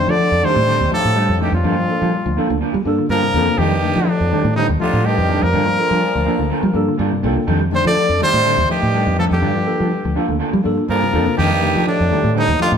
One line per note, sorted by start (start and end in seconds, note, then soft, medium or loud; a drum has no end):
0.00 0.16 D3 medium
0.00 0.11 G3 medium
0.00 0.13 A3 medium
0.00 0.13 D4 medium
0.00 0.13 D#4 medium
0.00 0.14 G4 medium
0.00 0.12 C5 loud
0.07 0.43 D3 medium
0.07 0.18 F3 loud
0.07 0.47 A3 loud
0.07 0.18 D4 soft
0.07 0.19 D#4 medium
0.07 0.19 A4 medium
0.07 0.46 D5 loud
0.19 0.40 F3 medium
0.19 muted clean electric guitar stroke soft
0.31 0.42 F2 medium
0.43 0.92 C3 loud
0.43 0.64 D#3 medium
0.43 0.56 G3 medium
0.43 0.93 G3 loud
0.43 0.61 A3 medium
0.43 0.61 D4 medium
0.43 0.57 D4 medium
0.43 0.62 D#4 medium
0.43 0.56 D#4 medium
0.43 0.62 G4 medium
0.43 0.56 A4 medium
0.43 0.92 C5 loud
0.56 0.79 A2 loud
0.56 muted clean electric guitar stroke soft
0.67 0.88 D3 medium
0.67 0.80 G3 medium
0.67 0.80 D4 medium
0.67 0.80 D#4 loud
0.67 0.79 A4 medium
0.80 0.91 D#2 medium
0.80 muted clean electric guitar stroke medium
0.91 1.38 A2 loud
0.91 1.13 F3 medium
0.91 1.38 F3 loud
0.91 1.10 A3 medium
0.91 1.10 D4 medium
0.91 1.10 D#4 medium
0.91 1.11 G4 loud
0.91 1.38 A4 loud
0.91 muted clean electric guitar stroke soft
1.05 1.28 A2 loud
1.16 1.29 G3 medium
1.16 1.37 G3 medium
1.16 1.28 D4 medium
1.16 1.28 D#4 medium
1.16 1.28 A4 medium
1.29 1.52 F2 medium
1.29 muted clean electric guitar stroke soft
1.39 1.53 G2 medium
1.39 1.53 D#3 medium
1.39 1.61 F3 medium
1.39 1.53 G3 medium
1.39 1.58 A3 medium
1.39 1.58 D4 medium
1.39 1.52 D4 medium
1.39 1.59 D#4 medium
1.39 1.52 D#4 medium
1.39 1.59 G4 medium
1.39 1.51 A4 medium
1.43 1.54 G4 medium
1.52 1.63 F2 medium
1.52 2.47 F2 medium
1.52 2.46 A#2 medium
1.52 2.47 F4 medium
1.52 muted clean electric guitar stroke soft
1.64 1.87 G2 loud
1.64 1.76 F3 medium
1.64 1.77 A#3 medium
1.64 1.76 D4 medium
1.64 1.76 F4 medium
1.64 1.76 A4 medium
1.78 1.99 F3 medium
1.88 2.07 A#3 medium
1.88 2.07 D4 medium
1.88 2.08 F4 medium
1.88 2.08 A4 medium
1.88 muted clean electric guitar stroke soft
2.01 2.12 F3 medium
2.01 2.23 G3 medium
2.01 2.11 F4 medium
2.01 2.12 A4 medium
2.01 muted clean electric guitar stroke soft
2.12 muted clean electric guitar stroke soft
2.26 2.36 D2 medium
2.26 2.47 F3 medium
2.37 2.55 A#3 medium
2.37 2.50 A#3 medium
2.37 2.50 D4 medium
2.37 2.56 D4 medium
2.37 2.56 F4 medium
2.37 2.49 F4 medium
2.37 2.49 A4 medium
2.37 2.56 A4 loud
2.37 muted fingered electric bass stroke soft
2.50 2.61 D2 medium
2.50 2.72 D3 medium
2.50 muted clean electric guitar stroke medium
2.61 2.74 A#3 medium
2.61 2.74 D4 medium
2.61 2.74 F4 loud
2.61 muted clean electric guitar stroke loud
2.74 2.85 G3 medium
2.74 2.96 G3 medium
2.74 muted clean electric guitar stroke soft
2.85 2.98 G2 medium
2.85 3.04 A#3 loud
2.85 3.04 D4 loud
2.85 3.05 F4 medium
2.85 3.05 A4 loud
2.85 muted clean electric guitar stroke soft
2.99 3.20 D3 medium
3.09 3.35 G2 medium
3.09 3.55 A#2 medium
3.09 3.62 F3 medium
3.09 3.23 A#3 medium
3.09 3.23 D4 medium
3.09 3.23 F4 medium
3.09 3.23 A4 medium
3.09 3.60 A#4 loud
3.23 3.44 C3 medium
3.23 muted clean electric guitar stroke soft
3.34 3.46 F2 loud
3.34 3.53 A#3 medium
3.34 3.48 A#3 medium
3.34 3.53 D4 medium
3.34 3.48 D4 medium
3.34 3.53 F4 medium
3.34 3.47 F4 medium
3.34 3.54 A4 medium
3.34 3.47 A4 medium
3.48 3.57 C3 medium
3.48 muted clean electric guitar stroke soft
3.58 3.94 F2 medium
3.58 4.07 G2 medium
3.58 3.80 D#3 medium
3.58 4.10 D#3 loud
3.58 3.72 G3 medium
3.58 3.71 D#4 medium
3.58 4.09 G4 loud
3.58 3.71 A4 medium
3.58 muted clean electric guitar stroke medium
3.72 muted clean electric guitar stroke soft
3.82 4.04 D3 medium
3.82 4.01 A3 medium
3.82 4.01 D4 medium
3.82 4.02 D#4 medium
3.82 4.02 G4 medium
3.82 muted clean electric guitar stroke soft
3.96 4.06 F3 medium
3.96 4.06 D4 soft
3.96 4.06 D#4 medium
3.96 4.07 A4 medium
4.07 4.56 D2 medium
4.07 4.56 A2 medium
4.07 4.28 F3 medium
4.07 4.56 D4 medium
4.07 muted clean electric guitar stroke soft
4.20 4.31 F2 medium
4.31 4.53 D#3 medium
4.31 4.45 G3 medium
4.31 4.50 A3 medium
4.31 4.45 D4 medium
4.31 4.51 D4 medium
4.31 4.45 D#4 medium
4.31 4.51 D#4 medium
4.31 4.51 G4 medium
4.31 4.44 A4 medium
4.44 4.67 A2 medium
4.44 muted clean electric guitar stroke soft
4.56 4.67 D#2 medium
4.56 4.68 C3 medium
4.56 4.77 D3 loud
4.56 4.69 G3 medium
4.56 4.69 D4 medium
4.56 4.67 D#4 loud
4.56 4.69 D#4 medium
4.56 4.69 A4 medium
4.69 4.80 D#2 medium
4.69 muted clean electric guitar stroke soft
4.80 5.03 F2 medium
4.80 5.07 D3 medium
4.80 5.01 F3 medium
4.80 4.99 A3 medium
4.80 4.99 D4 medium
4.80 4.99 D#4 medium
4.80 5.07 F4 medium
4.80 5.00 G4 medium
4.80 muted clean electric guitar stroke soft
4.93 5.16 A2 loud
5.04 5.43 G2 medium
5.04 5.44 D#3 medium
5.04 5.26 G3 medium
5.04 5.18 D#4 medium
5.04 5.44 G4 loud
5.04 5.18 A4 medium
5.18 5.41 F2 medium
5.18 muted clean electric guitar stroke soft
5.29 5.50 F3 medium
5.29 5.43 G3 medium
5.29 5.48 A3 medium
5.29 5.48 D4 medium
5.29 5.43 D4 medium
5.29 5.48 D#4 medium
5.29 5.42 D#4 medium
5.29 5.49 G4 medium
5.29 5.42 A4 medium
5.42 5.52 F2 medium
5.42 6.89 A#2 loud
5.42 6.88 F3 medium
5.42 6.88 A#4 loud
5.42 muted clean electric guitar stroke soft
5.53 5.76 G2 loud
5.53 5.65 D3 medium
5.53 5.66 A#3 medium
5.53 5.66 D4 medium
5.53 5.66 F4 medium
5.53 5.66 A4 medium
5.66 5.88 F3 medium
5.66 muted clean electric guitar stroke soft
5.77 5.96 A#3 medium
5.77 5.96 D4 medium
5.77 5.96 F4 medium
5.77 5.97 A4 medium
5.77 muted clean electric guitar stroke soft
5.91 6.01 F3 medium
5.91 6.12 G3 medium
5.91 6.01 D4 soft
5.91 6.01 F4 medium
5.91 6.01 A4 medium
6.02 muted clean electric guitar stroke soft
6.15 6.26 D2 medium
6.15 6.37 F3 medium
6.25 6.39 A#3 medium
6.25 6.44 A#3 medium
6.25 6.39 D4 medium
6.25 6.45 D4 medium
6.25 6.38 F4 medium
6.25 6.45 F4 medium
6.25 6.38 A4 medium
6.25 6.45 A4 medium
6.25 muted fingered electric bass stroke soft
6.39 6.50 D2 medium
6.39 6.61 D3 medium
6.39 muted clean electric guitar stroke medium
6.50 6.63 A#3 medium
6.50 6.63 D4 medium
6.50 6.62 F4 medium
6.50 6.62 A4 medium
6.63 6.85 F3 medium
6.63 6.74 G3 loud
6.63 muted clean electric guitar stroke medium
6.73 6.87 G2 medium
6.73 6.93 A#3 loud
6.73 6.94 D4 medium
6.73 6.93 F4 loud
6.73 6.94 A4 loud
6.73 muted clean electric guitar stroke soft
6.88 7.10 D3 medium
6.98 7.25 G2 medium
6.98 7.12 A#3 medium
6.98 7.11 D4 medium
6.98 7.11 F4 medium
6.98 7.10 A4 medium
6.98 7.22 D5 medium
7.12 7.33 C3 medium
7.12 muted clean electric guitar stroke soft
7.23 7.36 C2 loud
7.23 7.36 A#3 medium
7.23 7.42 A#3 medium
7.23 7.42 D4 medium
7.23 7.36 D4 medium
7.23 7.36 F4 medium
7.23 7.42 F4 medium
7.23 7.35 A4 medium
7.23 7.43 A4 medium
7.23 7.46 G5 medium
7.37 7.47 C3 medium
7.37 muted clean electric guitar stroke medium
7.47 7.83 F2 loud
7.47 7.69 D#3 loud
7.47 7.61 G3 loud
7.47 7.61 D4 loud
7.47 7.60 D#4 loud
7.47 7.60 A4 loud
7.62 muted clean electric guitar stroke soft
7.71 7.85 C3 medium
7.71 7.94 D3 medium
7.71 7.85 G3 medium
7.71 7.90 A3 medium
7.71 7.91 D4 medium
7.71 7.91 D#4 medium
7.71 7.91 G4 medium
7.71 7.86 C5 loud
7.71 muted clean electric guitar stroke soft
7.85 8.19 D3 medium
7.85 7.96 F3 loud
7.85 8.19 A3 medium
7.85 7.95 D4 soft
7.85 7.95 D#4 medium
7.85 7.95 A4 medium
7.85 8.19 D5 loud
7.96 8.18 F3 medium
7.96 muted clean electric guitar stroke soft
8.09 8.20 F2 medium
8.19 8.67 C3 loud
8.19 8.43 D#3 medium
8.19 8.33 G3 medium
8.19 8.67 G3 loud
8.19 8.39 A3 medium
8.19 8.32 D4 medium
8.19 8.39 D4 medium
8.19 8.32 D#4 medium
8.19 8.40 D#4 medium
8.19 8.40 G4 medium
8.19 8.31 A4 medium
8.19 8.67 C5 loud
8.33 8.57 A2 loud
8.33 muted clean electric guitar stroke medium
8.44 8.67 D3 loud
8.44 8.58 G3 medium
8.44 8.57 D4 medium
8.44 8.56 D#4 medium
8.44 8.56 A4 medium
8.57 8.68 D#2 medium
8.57 muted clean electric guitar stroke soft
8.69 9.15 G2 medium
8.69 9.16 D#3 medium
8.69 8.91 F3 medium
8.69 8.88 A3 medium
8.69 8.88 D4 medium
8.69 8.89 D#4 medium
8.69 8.89 G4 loud
8.69 9.16 G4 loud
8.69 muted clean electric guitar stroke soft
8.83 9.06 A2 loud
8.94 9.07 G3 medium
8.94 9.16 G3 medium
8.94 9.07 D4 medium
8.94 9.06 D#4 medium
8.94 9.06 A4 medium
9.06 9.30 F2 medium
9.06 muted clean electric guitar stroke soft
9.17 9.25 A2 medium
9.17 9.40 F3 medium
9.17 9.25 F3 medium
9.17 9.31 G3 medium
9.17 9.37 A3 medium
9.17 9.31 D4 medium
9.17 9.37 D4 medium
9.17 9.30 D#4 medium
9.17 9.37 D#4 medium
9.17 9.38 G4 medium
9.17 9.30 A4 medium
9.17 9.25 A4 medium
9.31 9.41 F2 medium
9.31 10.25 G2 medium
9.31 10.25 D3 medium
9.31 10.26 G4 medium
9.31 muted clean electric guitar stroke soft
9.42 9.65 G2 loud
9.42 9.54 D3 medium
9.42 9.54 D4 medium
9.42 9.54 F4 medium
9.42 muted clean electric guitar stroke medium
9.55 9.77 F3 medium
9.55 muted clean electric guitar stroke soft
9.65 9.85 A#3 medium
9.65 9.85 D4 medium
9.65 9.85 F4 medium
9.65 9.86 A4 medium
9.65 muted clean electric guitar stroke soft
9.80 9.91 F3 medium
9.80 10.02 G3 medium
9.80 9.90 D4 soft
9.80 9.90 A4 medium
9.80 muted clean electric guitar stroke medium
9.91 muted clean electric guitar stroke soft
10.05 10.15 D2 medium
10.05 10.26 F3 medium
10.15 10.29 A#3 medium
10.15 10.34 A#3 medium
10.15 10.28 D4 medium
10.15 10.34 D4 medium
10.15 10.28 F4 medium
10.15 10.35 F4 medium
10.15 10.27 A4 medium
10.15 10.35 A4 loud
10.15 muted fingered electric bass stroke soft
10.28 10.39 D2 medium
10.28 10.51 D3 medium
10.28 muted clean electric guitar stroke medium
10.39 10.53 A#3 medium
10.39 10.52 D4 medium
10.39 10.52 F4 medium
10.39 10.51 A4 medium
10.52 10.75 F3 medium
10.52 10.64 G3 medium
10.52 muted clean electric guitar stroke medium
10.64 10.77 G2 medium
10.64 10.83 A#3 loud
10.64 10.83 D4 medium
10.64 10.84 F4 medium
10.64 10.84 A4 loud
10.64 muted clean electric guitar stroke soft
10.78 muted clean electric guitar stroke medium
10.88 11.15 G2 medium
10.88 11.35 A#2 medium
10.88 11.35 F3 medium
10.88 11.02 A#3 medium
10.88 11.01 D4 medium
10.88 11.01 F4 medium
10.88 11.01 A4 medium
10.88 11.35 A#4 loud
11.02 11.24 C3 medium
11.02 muted clean electric guitar stroke medium
11.13 11.26 F2 medium
11.13 11.32 A#3 medium
11.13 11.26 A#3 medium
11.13 11.32 D4 medium
11.13 11.26 D4 medium
11.13 11.32 F4 medium
11.13 11.26 F4 medium
11.13 11.25 A4 medium
11.13 11.33 A4 loud
11.26 11.36 C3 medium
11.26 muted clean electric guitar stroke soft
11.37 11.74 F2 medium
11.37 11.84 G2 loud
11.37 11.59 D#3 medium
11.37 11.84 D#3 loud
11.37 11.51 G3 medium
11.37 11.51 D4 medium
11.37 11.51 D#4 medium
11.37 11.83 G4 loud
11.37 11.50 A4 medium
11.51 muted clean electric guitar stroke soft
11.61 11.83 D3 medium
11.61 11.80 A3 medium
11.61 11.80 D4 medium
11.61 11.81 D#4 medium
11.61 11.81 G4 medium
11.61 muted clean electric guitar stroke soft
11.76 11.86 F3 medium
11.76 11.87 D4 medium
11.76 11.86 D#4 soft
11.76 11.86 A4 medium
11.86 12.33 D2 medium
11.86 12.33 A2 medium
11.86 12.08 F3 medium
11.86 12.33 D4 loud
11.86 muted clean electric guitar stroke soft
12.00 12.11 F2 medium
12.10 12.32 D#3 medium
12.10 12.24 G3 medium
12.10 12.30 A3 medium
12.10 12.23 D4 medium
12.10 12.30 D4 medium
12.10 12.30 D#4 medium
12.10 12.31 G4 medium
12.10 12.23 A4 medium
12.10 muted clean electric guitar stroke medium
12.24 12.47 A2 loud
12.24 muted clean electric guitar stroke soft
12.35 12.59 D#2 medium
12.35 12.59 C3 medium
12.35 12.56 D3 medium
12.35 12.49 G3 medium
12.35 12.48 D4 medium
12.35 12.48 D#4 medium
12.35 12.60 D#4 loud
12.35 12.47 A4 loud
12.48 12.59 D#2 medium
12.48 muted clean electric guitar stroke medium
12.59 12.72 F2 medium
12.59 12.72 D3 medium
12.59 12.78 F3 medium
12.59 12.78 A3 medium
12.59 12.78 D4 medium
12.59 12.78 D#4 medium
12.59 12.72 F4 loud
12.59 12.78 G4 loud
12.59 muted clean electric guitar stroke soft
12.72 12.78 A2 loud